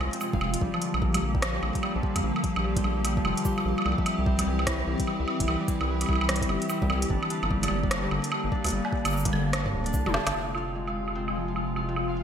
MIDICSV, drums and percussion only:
0, 0, Header, 1, 2, 480
1, 0, Start_track
1, 0, Key_signature, -4, "minor"
1, 0, Tempo, 405405
1, 726, Time_signature, 4, 2, 24, 8
1, 14482, End_track
2, 0, Start_track
2, 0, Title_t, "Drums"
2, 7, Note_on_c, 9, 76, 51
2, 126, Note_off_c, 9, 76, 0
2, 156, Note_on_c, 9, 42, 55
2, 247, Note_on_c, 9, 76, 50
2, 247, Note_on_c, 9, 82, 74
2, 275, Note_off_c, 9, 42, 0
2, 366, Note_off_c, 9, 76, 0
2, 366, Note_off_c, 9, 82, 0
2, 395, Note_on_c, 9, 36, 106
2, 396, Note_on_c, 9, 64, 87
2, 487, Note_on_c, 9, 76, 80
2, 514, Note_off_c, 9, 36, 0
2, 514, Note_off_c, 9, 64, 0
2, 605, Note_off_c, 9, 76, 0
2, 635, Note_on_c, 9, 42, 80
2, 726, Note_on_c, 9, 36, 121
2, 754, Note_off_c, 9, 42, 0
2, 845, Note_off_c, 9, 36, 0
2, 875, Note_on_c, 9, 76, 50
2, 966, Note_on_c, 9, 42, 51
2, 993, Note_off_c, 9, 76, 0
2, 1085, Note_off_c, 9, 42, 0
2, 1115, Note_on_c, 9, 76, 54
2, 1206, Note_on_c, 9, 36, 116
2, 1233, Note_off_c, 9, 76, 0
2, 1324, Note_off_c, 9, 36, 0
2, 1354, Note_on_c, 9, 42, 79
2, 1354, Note_on_c, 9, 64, 81
2, 1354, Note_on_c, 9, 76, 78
2, 1473, Note_off_c, 9, 42, 0
2, 1473, Note_off_c, 9, 64, 0
2, 1473, Note_off_c, 9, 76, 0
2, 1595, Note_on_c, 9, 36, 118
2, 1686, Note_on_c, 9, 37, 120
2, 1686, Note_on_c, 9, 42, 87
2, 1686, Note_on_c, 9, 76, 51
2, 1713, Note_off_c, 9, 36, 0
2, 1804, Note_off_c, 9, 37, 0
2, 1804, Note_off_c, 9, 42, 0
2, 1804, Note_off_c, 9, 76, 0
2, 1926, Note_on_c, 9, 76, 50
2, 2044, Note_off_c, 9, 76, 0
2, 2074, Note_on_c, 9, 36, 108
2, 2075, Note_on_c, 9, 42, 51
2, 2166, Note_on_c, 9, 76, 77
2, 2193, Note_off_c, 9, 36, 0
2, 2193, Note_off_c, 9, 42, 0
2, 2284, Note_off_c, 9, 76, 0
2, 2405, Note_on_c, 9, 36, 125
2, 2524, Note_off_c, 9, 36, 0
2, 2554, Note_on_c, 9, 42, 82
2, 2554, Note_on_c, 9, 76, 51
2, 2673, Note_off_c, 9, 42, 0
2, 2673, Note_off_c, 9, 76, 0
2, 2795, Note_on_c, 9, 76, 48
2, 2885, Note_on_c, 9, 36, 106
2, 2886, Note_on_c, 9, 42, 50
2, 2913, Note_off_c, 9, 76, 0
2, 3004, Note_off_c, 9, 36, 0
2, 3005, Note_off_c, 9, 42, 0
2, 3034, Note_on_c, 9, 76, 75
2, 3153, Note_off_c, 9, 76, 0
2, 3274, Note_on_c, 9, 36, 120
2, 3274, Note_on_c, 9, 42, 78
2, 3274, Note_on_c, 9, 64, 82
2, 3365, Note_on_c, 9, 76, 50
2, 3393, Note_off_c, 9, 36, 0
2, 3393, Note_off_c, 9, 42, 0
2, 3393, Note_off_c, 9, 64, 0
2, 3484, Note_off_c, 9, 76, 0
2, 3606, Note_on_c, 9, 42, 86
2, 3606, Note_on_c, 9, 76, 51
2, 3725, Note_off_c, 9, 42, 0
2, 3725, Note_off_c, 9, 76, 0
2, 3755, Note_on_c, 9, 36, 108
2, 3846, Note_on_c, 9, 76, 75
2, 3873, Note_off_c, 9, 36, 0
2, 3964, Note_off_c, 9, 76, 0
2, 3995, Note_on_c, 9, 42, 51
2, 4086, Note_on_c, 9, 36, 118
2, 4087, Note_on_c, 9, 82, 77
2, 4114, Note_off_c, 9, 42, 0
2, 4205, Note_off_c, 9, 36, 0
2, 4205, Note_off_c, 9, 82, 0
2, 4235, Note_on_c, 9, 76, 49
2, 4354, Note_off_c, 9, 76, 0
2, 4475, Note_on_c, 9, 76, 47
2, 4521, Note_off_c, 9, 76, 0
2, 4521, Note_on_c, 9, 76, 39
2, 4566, Note_off_c, 9, 76, 0
2, 4566, Note_on_c, 9, 76, 50
2, 4641, Note_off_c, 9, 76, 0
2, 4641, Note_on_c, 9, 76, 26
2, 4715, Note_on_c, 9, 36, 108
2, 4760, Note_off_c, 9, 76, 0
2, 4807, Note_on_c, 9, 42, 48
2, 4807, Note_on_c, 9, 76, 73
2, 4834, Note_off_c, 9, 36, 0
2, 4926, Note_off_c, 9, 42, 0
2, 4926, Note_off_c, 9, 76, 0
2, 5047, Note_on_c, 9, 36, 120
2, 5165, Note_off_c, 9, 36, 0
2, 5196, Note_on_c, 9, 42, 79
2, 5196, Note_on_c, 9, 64, 87
2, 5196, Note_on_c, 9, 76, 53
2, 5314, Note_off_c, 9, 42, 0
2, 5314, Note_off_c, 9, 64, 0
2, 5314, Note_off_c, 9, 76, 0
2, 5436, Note_on_c, 9, 76, 48
2, 5527, Note_on_c, 9, 36, 110
2, 5527, Note_on_c, 9, 37, 116
2, 5527, Note_on_c, 9, 42, 87
2, 5555, Note_off_c, 9, 76, 0
2, 5645, Note_off_c, 9, 36, 0
2, 5646, Note_off_c, 9, 37, 0
2, 5646, Note_off_c, 9, 42, 0
2, 5916, Note_on_c, 9, 36, 115
2, 5916, Note_on_c, 9, 42, 51
2, 6008, Note_on_c, 9, 76, 49
2, 6034, Note_off_c, 9, 36, 0
2, 6034, Note_off_c, 9, 42, 0
2, 6126, Note_off_c, 9, 76, 0
2, 6247, Note_on_c, 9, 76, 50
2, 6366, Note_off_c, 9, 76, 0
2, 6396, Note_on_c, 9, 36, 107
2, 6396, Note_on_c, 9, 42, 74
2, 6487, Note_on_c, 9, 76, 79
2, 6514, Note_off_c, 9, 36, 0
2, 6514, Note_off_c, 9, 42, 0
2, 6606, Note_off_c, 9, 76, 0
2, 6727, Note_on_c, 9, 36, 115
2, 6728, Note_on_c, 9, 42, 47
2, 6845, Note_off_c, 9, 36, 0
2, 6846, Note_off_c, 9, 42, 0
2, 6875, Note_on_c, 9, 76, 52
2, 6994, Note_off_c, 9, 76, 0
2, 7116, Note_on_c, 9, 42, 77
2, 7116, Note_on_c, 9, 76, 25
2, 7127, Note_off_c, 9, 76, 0
2, 7127, Note_on_c, 9, 76, 28
2, 7177, Note_off_c, 9, 76, 0
2, 7177, Note_on_c, 9, 76, 34
2, 7207, Note_off_c, 9, 76, 0
2, 7207, Note_on_c, 9, 36, 100
2, 7207, Note_on_c, 9, 76, 37
2, 7234, Note_off_c, 9, 42, 0
2, 7257, Note_off_c, 9, 76, 0
2, 7257, Note_on_c, 9, 76, 38
2, 7288, Note_off_c, 9, 76, 0
2, 7288, Note_on_c, 9, 76, 43
2, 7325, Note_off_c, 9, 36, 0
2, 7356, Note_off_c, 9, 76, 0
2, 7356, Note_on_c, 9, 76, 74
2, 7446, Note_on_c, 9, 37, 110
2, 7446, Note_on_c, 9, 42, 80
2, 7474, Note_off_c, 9, 76, 0
2, 7527, Note_off_c, 9, 42, 0
2, 7527, Note_on_c, 9, 42, 67
2, 7565, Note_off_c, 9, 37, 0
2, 7595, Note_on_c, 9, 36, 107
2, 7607, Note_off_c, 9, 42, 0
2, 7607, Note_on_c, 9, 42, 57
2, 7686, Note_on_c, 9, 76, 51
2, 7714, Note_off_c, 9, 36, 0
2, 7726, Note_off_c, 9, 42, 0
2, 7805, Note_off_c, 9, 76, 0
2, 7835, Note_on_c, 9, 42, 50
2, 7927, Note_on_c, 9, 76, 52
2, 7927, Note_on_c, 9, 82, 86
2, 7954, Note_off_c, 9, 42, 0
2, 8045, Note_off_c, 9, 76, 0
2, 8045, Note_off_c, 9, 82, 0
2, 8075, Note_on_c, 9, 36, 103
2, 8075, Note_on_c, 9, 64, 95
2, 8167, Note_on_c, 9, 76, 82
2, 8194, Note_off_c, 9, 36, 0
2, 8194, Note_off_c, 9, 64, 0
2, 8285, Note_off_c, 9, 76, 0
2, 8315, Note_on_c, 9, 42, 73
2, 8407, Note_on_c, 9, 36, 107
2, 8433, Note_off_c, 9, 42, 0
2, 8525, Note_off_c, 9, 36, 0
2, 8555, Note_on_c, 9, 76, 53
2, 8647, Note_on_c, 9, 42, 50
2, 8674, Note_off_c, 9, 76, 0
2, 8765, Note_off_c, 9, 42, 0
2, 8795, Note_on_c, 9, 76, 55
2, 8887, Note_on_c, 9, 36, 100
2, 8914, Note_off_c, 9, 76, 0
2, 9005, Note_off_c, 9, 36, 0
2, 9035, Note_on_c, 9, 42, 77
2, 9035, Note_on_c, 9, 64, 88
2, 9035, Note_on_c, 9, 76, 37
2, 9046, Note_off_c, 9, 76, 0
2, 9046, Note_on_c, 9, 76, 51
2, 9095, Note_off_c, 9, 76, 0
2, 9095, Note_on_c, 9, 76, 65
2, 9154, Note_off_c, 9, 42, 0
2, 9154, Note_off_c, 9, 64, 0
2, 9214, Note_off_c, 9, 76, 0
2, 9275, Note_on_c, 9, 36, 110
2, 9366, Note_on_c, 9, 37, 112
2, 9366, Note_on_c, 9, 42, 89
2, 9366, Note_on_c, 9, 76, 53
2, 9394, Note_off_c, 9, 36, 0
2, 9484, Note_off_c, 9, 37, 0
2, 9484, Note_off_c, 9, 42, 0
2, 9484, Note_off_c, 9, 76, 0
2, 9606, Note_on_c, 9, 76, 55
2, 9725, Note_off_c, 9, 76, 0
2, 9755, Note_on_c, 9, 42, 51
2, 9847, Note_on_c, 9, 76, 84
2, 9874, Note_off_c, 9, 42, 0
2, 9965, Note_off_c, 9, 76, 0
2, 10086, Note_on_c, 9, 36, 117
2, 10205, Note_off_c, 9, 36, 0
2, 10235, Note_on_c, 9, 42, 73
2, 10235, Note_on_c, 9, 76, 55
2, 10258, Note_off_c, 9, 42, 0
2, 10258, Note_on_c, 9, 42, 60
2, 10282, Note_off_c, 9, 42, 0
2, 10282, Note_on_c, 9, 42, 50
2, 10354, Note_off_c, 9, 76, 0
2, 10400, Note_off_c, 9, 42, 0
2, 10476, Note_on_c, 9, 76, 52
2, 10566, Note_on_c, 9, 36, 102
2, 10594, Note_off_c, 9, 76, 0
2, 10685, Note_off_c, 9, 36, 0
2, 10716, Note_on_c, 9, 42, 53
2, 10716, Note_on_c, 9, 76, 87
2, 10716, Note_on_c, 9, 82, 28
2, 10728, Note_off_c, 9, 82, 0
2, 10728, Note_on_c, 9, 82, 33
2, 10777, Note_off_c, 9, 82, 0
2, 10777, Note_on_c, 9, 82, 38
2, 10808, Note_off_c, 9, 82, 0
2, 10808, Note_on_c, 9, 82, 41
2, 10835, Note_off_c, 9, 42, 0
2, 10835, Note_off_c, 9, 76, 0
2, 10857, Note_off_c, 9, 82, 0
2, 10857, Note_on_c, 9, 82, 49
2, 10888, Note_off_c, 9, 82, 0
2, 10888, Note_on_c, 9, 82, 52
2, 10955, Note_on_c, 9, 36, 111
2, 10956, Note_on_c, 9, 42, 83
2, 10956, Note_on_c, 9, 64, 92
2, 11006, Note_off_c, 9, 82, 0
2, 11046, Note_on_c, 9, 76, 55
2, 11073, Note_off_c, 9, 36, 0
2, 11074, Note_off_c, 9, 42, 0
2, 11074, Note_off_c, 9, 64, 0
2, 11165, Note_off_c, 9, 76, 0
2, 11286, Note_on_c, 9, 37, 112
2, 11286, Note_on_c, 9, 42, 96
2, 11286, Note_on_c, 9, 76, 54
2, 11405, Note_off_c, 9, 37, 0
2, 11405, Note_off_c, 9, 42, 0
2, 11405, Note_off_c, 9, 76, 0
2, 11435, Note_on_c, 9, 36, 96
2, 11458, Note_off_c, 9, 36, 0
2, 11458, Note_on_c, 9, 36, 79
2, 11481, Note_off_c, 9, 36, 0
2, 11481, Note_on_c, 9, 36, 63
2, 11503, Note_off_c, 9, 36, 0
2, 11503, Note_on_c, 9, 36, 51
2, 11526, Note_off_c, 9, 36, 0
2, 11526, Note_on_c, 9, 36, 43
2, 11563, Note_off_c, 9, 36, 0
2, 11563, Note_on_c, 9, 36, 37
2, 11601, Note_off_c, 9, 36, 0
2, 11601, Note_on_c, 9, 36, 29
2, 11638, Note_off_c, 9, 36, 0
2, 11638, Note_on_c, 9, 36, 24
2, 11675, Note_on_c, 9, 42, 56
2, 11756, Note_off_c, 9, 36, 0
2, 11766, Note_on_c, 9, 36, 110
2, 11766, Note_on_c, 9, 82, 78
2, 11793, Note_off_c, 9, 42, 0
2, 11884, Note_off_c, 9, 82, 0
2, 11885, Note_off_c, 9, 36, 0
2, 11915, Note_on_c, 9, 48, 51
2, 11915, Note_on_c, 9, 64, 95
2, 11915, Note_on_c, 9, 76, 55
2, 12006, Note_on_c, 9, 38, 79
2, 12033, Note_off_c, 9, 48, 0
2, 12033, Note_off_c, 9, 64, 0
2, 12033, Note_off_c, 9, 76, 0
2, 12125, Note_off_c, 9, 38, 0
2, 12155, Note_on_c, 9, 38, 82
2, 12155, Note_on_c, 9, 42, 79
2, 12155, Note_on_c, 9, 76, 55
2, 12247, Note_off_c, 9, 76, 0
2, 12247, Note_on_c, 9, 76, 47
2, 12274, Note_off_c, 9, 38, 0
2, 12274, Note_off_c, 9, 42, 0
2, 12365, Note_off_c, 9, 76, 0
2, 12487, Note_on_c, 9, 42, 47
2, 12487, Note_on_c, 9, 76, 68
2, 12605, Note_off_c, 9, 42, 0
2, 12605, Note_off_c, 9, 76, 0
2, 12876, Note_on_c, 9, 42, 74
2, 12876, Note_on_c, 9, 76, 50
2, 12994, Note_off_c, 9, 42, 0
2, 12994, Note_off_c, 9, 76, 0
2, 13115, Note_on_c, 9, 76, 46
2, 13206, Note_on_c, 9, 42, 83
2, 13233, Note_off_c, 9, 76, 0
2, 13325, Note_off_c, 9, 42, 0
2, 13355, Note_on_c, 9, 76, 69
2, 13473, Note_off_c, 9, 76, 0
2, 13595, Note_on_c, 9, 42, 48
2, 13686, Note_on_c, 9, 76, 48
2, 13714, Note_off_c, 9, 42, 0
2, 13805, Note_off_c, 9, 76, 0
2, 13927, Note_on_c, 9, 76, 50
2, 14045, Note_off_c, 9, 76, 0
2, 14075, Note_on_c, 9, 42, 73
2, 14166, Note_on_c, 9, 76, 71
2, 14193, Note_off_c, 9, 42, 0
2, 14284, Note_off_c, 9, 76, 0
2, 14406, Note_on_c, 9, 42, 49
2, 14482, Note_off_c, 9, 42, 0
2, 14482, End_track
0, 0, End_of_file